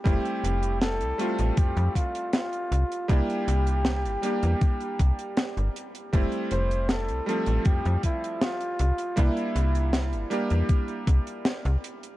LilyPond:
<<
  \new Staff \with { instrumentName = "Flugelhorn" } { \time 4/4 \key f \major \tempo 4 = 79 g'4 a'4 g'8 f'8 f'4 | g'2.~ g'8 r8 | r8 c''8 a'8 a'8 g'8 e'8 f'4 | e'4. r2 r8 | }
  \new Staff \with { instrumentName = "Electric grand piano" } { \time 4/4 \key f \major <g a c' e'>4. <g a c' f'>2~ <g a c' f'>8 | <g bes d' e'>4. <g bes d' g'>2~ <g bes d' g'>8 | <g a c' e'>4. <f g a c'>2~ <f g a c'>8 | <g bes d' e'>4. <g bes d' g'>2~ <g bes d' g'>8 | }
  \new Staff \with { instrumentName = "FM bass" } { \clef bass \time 4/4 \key f \major f,,16 r16 f,,8. c,16 r16 a,,16 f,16 f,16 r4 c,16 r16 | c,16 r16 c,8. g,,16 r16 e,16 r8 c,16 r8 g,,16 r8 | f,,16 r16 f,,8. c,16 r16 a,,16 f,16 f,16 r4 c,16 r16 | c,16 r16 c,8. g,,16 r16 e,16 r8 c,16 r8 c,16 r8 | }
  \new DrumStaff \with { instrumentName = "Drums" } \drummode { \time 4/4 <hh bd>16 hh16 hh16 hh16 <hh sn>16 hh16 hh16 hh16 <hh bd>16 hh16 <hh bd>16 hh16 <hh sn>16 hh16 hh16 hh16 | <hh bd>16 hh16 hh16 hh16 <hh sn>16 hh16 hh16 hh16 <hh bd>16 hh16 <hh bd>16 hh16 <hh sn>16 hh16 hh16 hh16 | <hh bd>16 hh16 hh16 hh16 <hh sn>16 hh16 hh16 hh16 <hh bd>16 hh16 <hh bd>16 hh16 <hh sn>16 hh16 hh16 hh16 | <hh bd>16 hh16 hh16 hh16 <hh sn>16 hh16 hh16 hh16 <hh bd>16 hh16 <hh bd>16 hh16 <hh sn>16 hh16 hh16 hh16 | }
>>